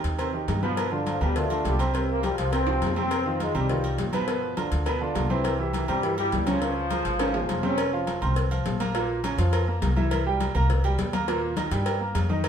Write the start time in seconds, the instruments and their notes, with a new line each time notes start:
Already playing: grand piano D#3 D#4 G4
0.04 upright bass D#2, cowbell, high conga
0.18 grand piano C3 C4 C5, cowbell, high conga, low agogo
0.33 grand piano D#3 D#4 G4, high conga
0.48 upright bass G2, cowbell, high conga, low timbale, low agogo
0.62 grand piano B2 B3 B4, trombone section F3, high conga, low agogo
0.77 cowbell, high conga, low agogo
0.92 grand piano D3 D4 F4, high conga
1.06 trombone section F3, cowbell, high conga, low timbale, low agogo
1.21 upright bass D2, grand piano B2 B3 B4, trombone section G3, high conga, low conga, low agogo
1.36 grand piano D3 D4 F4, trombone section A3, cowbell, high conga
1.50 grand piano D3 D4 F4, high conga, low agogo
1.65 upright bass C2, trombone section G3, cowbell, high conga, low timbale
1.79 grand piano C3 C4 C5, cowbell, high conga, low agogo
1.94 grand piano C3 C4 C5, trombone section G3, cowbell, high conga, low agogo
2.09 trombone section A#3, high conga
2.23 grand piano F3 F4 G4, trombone section G3, cowbell, high conga, low timbale, low agogo
2.38 upright bass C2, trombone section F3, cowbell, high conga
2.52 grand piano C3 C4 C5, trombone section C4, cowbell, high conga, low agogo
2.67 grand piano F3 F4 G4, high conga, high timbale
2.81 upright bass F2, cowbell, high conga, low agogo
2.87 low timbale
2.96 grand piano C3 C4 C5, trombone section C4, high conga, low timbale, low agogo
3.11 cowbell, low agogo
3.26 grand piano D#3 D#4 F4
3.40 trombone section G#3, cowbell, high conga, low timbale, low agogo
3.54 upright bass C2, grand piano C3 C4 C5, trombone section G3, high conga, low conga, low agogo
3.69 grand piano D#3 D#4 F4, cowbell, high conga, low conga
3.84 grand piano D#3 D#4 F4, high conga, low agogo
3.98 upright bass G1, cowbell, high conga, low timbale
4.13 grand piano B2 B3 B4, trombone section F3, cowbell, high conga, low agogo
4.27 grand piano B2 B3 B4, cowbell, high conga, low agogo
4.42 high conga
4.57 grand piano D3 D4 F4, cowbell, high conga, low timbale, low agogo
4.71 upright bass D2, cowbell, high conga
4.86 grand piano B2 B3 B4, cowbell, high conga, low agogo
5.01 grand piano D3 D4 F4, high conga
5.15 upright bass C2, cowbell, high conga, low timbale, low agogo
5.30 grand piano C3 C4 C5, trombone section E3, high conga, low agogo
5.44 cowbell, high conga, low agogo
5.59 grand piano E3 E4 G4, high conga
5.73 trombone section E3, cowbell, high conga, low timbale, low agogo
5.88 upright bass G2, grand piano C3 C4 C5, trombone section G3, high conga, low conga, low agogo
6.03 grand piano E3 E4 G4, cowbell, high conga
6.18 grand piano E3 E4 G4, trombone section G3, high conga, low agogo
6.32 upright bass C#2, cowbell, high conga, low timbale
6.47 grand piano C#3 C#4 C#5, trombone section F3, cowbell, high conga, low agogo
6.61 grand piano C#3 C#4 C#5, cowbell, high conga, low agogo
6.77 high conga
6.90 grand piano F3 F4 G#4, cowbell, high conga, low timbale, low agogo
7.05 upright bass G#1, cowbell, high conga
7.19 grand piano C#3 C#4 C#5, cowbell, high conga, high timbale, low agogo
7.34 grand piano F3 F4 G#4, high conga, low timbale
7.49 upright bass F1, cowbell, high conga, low timbale, low agogo
7.63 grand piano C3 C4 C5, trombone section C#4, high conga, low timbale, low agogo
7.78 cowbell, high conga, low agogo
7.93 grand piano F3 F4 F5, high conga
8.07 cowbell, high conga, low timbale, low agogo
8.22 upright bass C2, grand piano C4 C5 C6, high conga, low conga, low agogo
8.36 cowbell, high conga
8.51 grand piano F3 F4 F5, high conga, low agogo
8.65 upright bass A#1, cowbell, high conga, low timbale
8.80 grand piano A#3 A#4 A#5, cowbell, high conga, low agogo
8.95 grand piano A#2 A#3 A#4, cowbell, high conga, low agogo
9.24 grand piano C#3 C#4 C#5, cowbell, high conga, low timbale, low agogo
9.38 upright bass F2, grand piano F3 F4 F5, cowbell, high conga
9.53 cowbell, high conga, low agogo
9.67 grand piano A#3 A#4 A#5, high conga
9.82 upright bass C2, cowbell, high conga, low timbale, low agogo
9.97 grand piano E3 E4 E5, high conga, low agogo
10.11 cowbell, high conga, low agogo
10.26 grand piano G3 G4 G5, high conga
10.40 cowbell, high conga, low timbale, low agogo
10.55 upright bass C2, grand piano A#3 A#4 A#5, high conga, low conga, low agogo
10.70 cowbell, high conga, low conga
10.84 grand piano G3 G4 G5, high conga, low agogo
10.98 upright bass D#2, cowbell, high conga, low timbale
11.13 grand piano A#3 A#4 A#5, cowbell, high conga, low agogo
11.28 grand piano A#2 A#3 A#4, cowbell, high conga, low agogo
11.42 high conga
11.56 grand piano D#3 D#4 D#5, cowbell, high conga, low timbale, low agogo
11.71 upright bass G2, grand piano G3 G4 G5, cowbell, high conga
11.85 cowbell, high conga, low agogo
12.00 grand piano A#3 A#4 A#5, high conga
12.15 upright bass F2, cowbell, high conga, low timbale, low agogo
12.29 grand piano D#3 D#4 D#5, high conga, low agogo
12.44 cowbell, low agogo